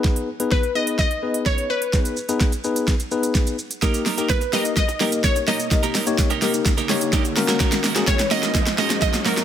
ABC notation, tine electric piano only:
X:1
M:4/4
L:1/16
Q:1/4=127
K:G#m
V:1 name="Tine electric piano"
[B,DGB]2 z [B,DGB]2 z [B,DGB]3 z [B,DGB]4 z2 | [B,DGB]2 z [B,DGB]2 z [B,DGB]3 z [B,DGB]4 z2 | [A,D=GA]2 z [A,DGA]2 z [A,DGA]3 z [A,DGA]4 z2 | [A,D=GA]2 z [A,DGc]2 z [A,DGA]3 z [A,DGc]4 [A,CFA]2- |
[A,CFA]2 z [A,CFG]2 z [A,CFA]3 z [A,CFG]4 z2 |]